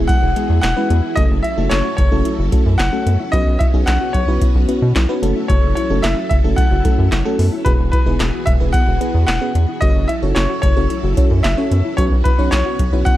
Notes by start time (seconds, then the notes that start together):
Already playing: E3 G#3 B3 E4 F#4 G#4
0.07 E4 F#5, kick, closed hi-hat
0.23 E1 F#4
0.36 G#3 B3 E4 G#4, closed hi-hat
0.50 E2
0.61 E1 E4 F#5, snare, clap, closed hi-hat
0.77 G#3 B3 C#4 E4 B4
0.90 E2 B3, closed hi-hat
1.04 E4
1.16 F#1 F#3 A3 C#4 F#4 A4 D#5, kick, closed hi-hat
1.31 F#1
1.43 E4 E5, closed hi-hat
1.58 F#1 A3 C#4 D#4 F#4 A4
1.70 F#1 E4 C#5, snare, clap, closed hi-hat
1.85 F#4
1.97 F#1 C#5, kick, closed hi-hat
2.12 F#1 A3 C#4 E4 F#4 A4
2.25 E4, closed hi-hat
2.39 F#1 F#4
2.52 A3 C#4 E4 F#4 A4, kick, closed hi-hat
2.66 F#2
2.78 F#1 E4 F#5, snare, clap, closed hi-hat
2.93 A3 C#4 F#4 A4
3.06 F#2 B3, closed hi-hat
3.20 E4
3.32 B1 B3 C#4 F#4 B4 D#5, kick, closed hi-hat
3.47 B1
3.59 E4 E5, kick, closed hi-hat
3.74 B1 B3 C#4 D#4 F#4 G#4
3.86 B1 E4 F#5, snare, clap, closed hi-hat
4.01 F#4
4.13 B1 C#5, kick, closed hi-hat
4.28 B1 B3 C#4 E4 F#4 B4
4.42 E4, kick, closed hi-hat
4.55 B1 F#4
4.68 B3 C#4 E4 F#4 B4, closed hi-hat
4.82 B2
4.96 B1 E4, snare, clap, closed hi-hat
5.09 B3 C#4 D#4 F#4 B4
5.23 F#1 F#3 A3 C#4 E4 F#4 A4, closed hi-hat
5.36 E4
5.48 F#1 F#4 C#5, kick, closed hi-hat
5.63 F#1
5.75 E4 C#5, closed hi-hat
5.90 F#1 A3 C#4 D#4 F#4 A4
6.02 F#1 E4 E5, snare, clap, closed hi-hat
6.17 F#4
6.29 F#1 E5, kick, closed hi-hat
6.44 F#1 A3 C#4 E4 F#4 A4
6.56 E4 F#5, kick, closed hi-hat
6.71 F#1 F#4
6.85 A3 C#4 E4 F#4 A4, kick, closed hi-hat
6.98 F#2
7.12 F#1 E4, snare, clap, closed hi-hat
7.25 A3 C#4 F#4 A4
7.39 F#2 B3, open hi-hat
7.52 E4
7.65 E1 E3 B3 E4 F#4 G#4 B4, kick, closed hi-hat
7.79 E1
7.92 E4 B4, kick, closed hi-hat
8.06 E1 B3 D#4 E4 G#4 B4
8.20 E1 E4, snare, clap, closed hi-hat
8.33 F#4
8.46 E1 E5, kick, closed hi-hat
8.60 E1 B3 E4 G#4 B4
8.73 E4 F#5, kick, closed hi-hat
8.88 E1 F#4
9.01 B3 E4 G#4 B4, closed hi-hat
9.14 E2
9.27 E1 E4 F#5, snare, clap, closed hi-hat
9.41 B3 C#4 E4 G#4 B4
9.55 E2 B3, closed hi-hat
9.69 E4
9.81 F#1 F#3 C#4 E4 F#4 A4 C#5 D#5, kick, closed hi-hat
9.96 F#1
10.08 E4 E5, closed hi-hat
10.23 F#1 C#4 D#4 F#4 A4 C#5
10.35 F#1 E4 C#5, snare, clap, closed hi-hat
10.50 F#4
10.62 F#1 C#5, kick, closed hi-hat
10.77 F#1 C#4 E4 F#4 A4 C#5
10.90 E4, closed hi-hat
11.04 F#1 F#4
11.17 C#4 E4 F#4 A4 C#5, kick, closed hi-hat
11.31 F#2
11.43 F#1 E4 E5, snare, clap, closed hi-hat
11.58 C#4 F#4 A4 C#5
11.71 F#2 B3, closed hi-hat
11.85 E4
11.97 B1 B3 C#4 F#4 B4 C#5, kick, closed hi-hat
12.12 B1
12.24 E4 B4, kick, closed hi-hat
12.39 B1 C#4 D#4 F#4 B4 C#5
12.51 B1 E4 C#5, snare, clap, closed hi-hat
12.66 F#4
12.79 B1, kick, closed hi-hat
12.93 B1 C#4 E4 F#4 B4 C#5
13.05 E4 F#5, kick, closed hi-hat